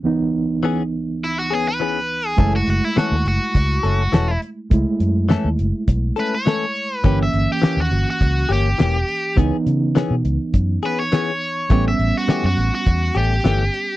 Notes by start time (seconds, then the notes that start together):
0.03 C#2 E3 B3 D#4
0.63 E3 B3 C#4 G#4
1.24 E4
1.39 F#4
1.51 B3 C#4 G#4
1.68 B4
1.80 E3 B3 C#4 G#4
2.27 G#4
2.37 F#1 E3 G#3 A3 C#4 E4 A4, kick, closed hi-hat
2.56 F#4
2.67 F#1 F#4, closed hi-hat
2.85 E4
2.96 E3 A3 C#4 F#4 A4, muted fingered electric bass stroke, snare, closed hi-hat
3.12 D#2
3.25 F#1 F#4, closed hi-hat
3.55 C#2, kick, closed hi-hat
3.83 F#1 A3 C#4 A4, closed hi-hat
4.12 E1 E3 A3 C#4 A4, snare, closed hi-hat
4.42 closed hi-hat
4.70 C#2 G#3 A3 E4, kick, closed hi-hat
5.00 F#2, closed hi-hat
5.29 E3 A3 C#4 A4, snare, closed hi-hat
5.45 D#2
5.59 F#1, closed hi-hat
5.88 B1, kick, closed hi-hat
6.16 A3 C#4 A4 B4, closed hi-hat
6.34 C#5
6.46 E3 A3 C#4 A4, snare, closed hi-hat
6.75 closed hi-hat
6.97 B4
7.04 G1 E3 A#3 C#4 G4, kick, closed hi-hat
7.23 E5
7.33 G1, closed hi-hat
7.52 G4
7.62 E3 A#3 C#4 G4, muted fingered electric bass stroke, snare, closed hi-hat
7.77 D#2
7.81 F#4
7.91 G1, closed hi-hat
8.10 F#4
8.21 C#2, kick, closed hi-hat
8.49 G1 A#3 C#4 G4, closed hi-hat
8.78 E1 E3 A#3 C#4 G4, snare, closed hi-hat
9.08 closed hi-hat
9.36 C#2 E3 B3 C#4 D#4 G#4, kick, closed hi-hat
9.66 C#3, closed hi-hat
9.95 E3 B3 C#4 G#4, snare, closed hi-hat
10.11 B2
10.24 C#2, closed hi-hat
10.54 F#2, kick, closed hi-hat
10.83 B3 C#4 G#4 B4, closed hi-hat
11.00 C#5
11.12 E3 B3 C#4 G#4, snare, closed hi-hat
11.41 closed hi-hat
11.69 A1 E3 G3 A3 B3 C#4 G4, kick, closed hi-hat
11.88 E5
11.99 A1, closed hi-hat
12.18 F#4
12.28 E3 A3 C#4 G4, muted fingered electric bass stroke, snare, closed hi-hat
12.44 F#2 F#4
12.57 A1, closed hi-hat
12.75 F#4
12.86 E2, kick, closed hi-hat
13.15 A1 A3 C#4 G4, closed hi-hat
13.44 G1 E3 A3 C#4 G4, snare, closed hi-hat
13.74 closed hi-hat